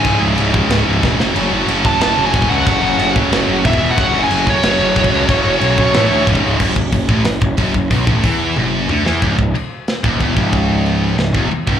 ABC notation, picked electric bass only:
X:1
M:4/4
L:1/8
Q:1/4=183
K:F#dor
V:1 name="Picked electric bass" clef=bass
C,,, C,,, C,,,2 C,,, C,,, E,,, F,,, | F,,, F,,, F,,,2 F,,, F,,, F,,, C,, | F,,, F,,, F,,,2 F,,, F,,, E,,, E,,, | F,,, F,,, F,,,2 F,,, F,,, F,,, C,, |
F,,, F,,, B,,,2 A,,, =D,, C,,, C,,, | F,,, F,,, F,,, A,,, F,,, F,,, F,,, F,,, | B,,, A,,, E,,2 F,,,2 =D,, E,, | C,,, C,,, z3 D,,, E,,, C,,,- |
C,,,4 C,,, E,,, z C,,, |]